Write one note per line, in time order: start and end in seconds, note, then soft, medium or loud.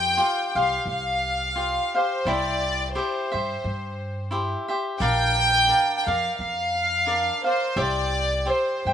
0.00 0.17 F2 medium
0.00 0.16 F4 medium
0.00 0.17 G4 medium
0.00 0.17 C5 medium
0.00 0.17 F5 medium
0.00 0.44 G5 loud
0.17 0.55 F4 medium
0.17 0.55 G4 medium
0.17 0.55 C5 medium
0.17 0.54 F5 medium
0.47 0.55 G5 medium
0.55 0.76 C2 medium
0.55 1.56 G4 soft
0.55 1.56 C5 soft
0.55 1.56 F5 medium
0.55 0.87 F5 medium
0.85 1.76 C2 medium
0.91 1.92 F5 medium
1.56 1.94 F4 soft
1.56 1.94 G4 soft
1.56 1.94 C5 soft
1.56 1.93 F5 soft
1.95 2.25 G4 soft
1.95 2.26 C5 soft
1.95 2.27 C5 medium
1.95 2.26 F5 soft
2.25 2.95 C2 medium
2.25 2.94 E4 medium
2.25 2.94 G4 medium
2.25 2.95 C5 medium
2.25 2.96 D5 medium
2.25 2.95 E5 medium
2.95 3.33 E4 medium
2.95 3.31 G4 medium
2.95 4.29 C5 medium
2.95 3.31 C5 medium
2.95 3.30 E5 medium
3.32 3.53 G2 medium
3.32 4.31 G4 soft
3.32 4.31 C5 medium
3.32 4.31 E5 medium
3.64 4.53 G2 medium
4.31 4.69 E4 medium
4.31 4.68 G4 soft
4.31 4.68 C5 medium
4.31 4.67 E5 medium
4.68 5.00 G4 soft
4.68 5.00 C5 medium
4.68 5.00 E5 medium
4.99 5.69 A#1 medium
4.99 5.66 D4 medium
4.99 5.67 A#4 medium
4.99 5.68 D5 medium
4.99 5.68 F5 medium
4.99 5.95 G5 loud
5.68 6.06 D4 medium
5.68 6.06 A#4 medium
5.68 6.06 D5 medium
5.68 6.05 F5 medium
5.98 6.06 G5 medium
6.06 6.27 F2 medium
6.06 7.06 A#4 soft
6.06 7.07 D5 soft
6.06 7.06 F5 medium
6.06 6.38 F5 medium
6.39 7.29 F2 medium
6.39 7.42 F5 medium
7.06 7.45 D4 soft
7.06 7.45 A#4 soft
7.06 7.44 D5 medium
7.06 7.43 F5 soft
7.44 7.76 A#4 soft
7.44 7.77 C5 medium
7.44 7.76 D5 soft
7.44 7.76 F5 soft
7.76 8.47 C2 medium
7.76 8.44 G4 medium
7.76 8.46 C5 medium
7.76 8.48 D5 medium
7.76 8.46 E5 medium
7.76 8.46 G5 medium
8.46 8.85 G4 medium
8.46 8.85 C5 medium
8.46 8.85 E5 medium
8.46 8.85 G5 medium
8.50 8.93 C5 medium
8.85 8.93 G2 medium
8.85 8.93 C5 soft
8.85 8.93 E5 soft
8.85 8.93 G5 medium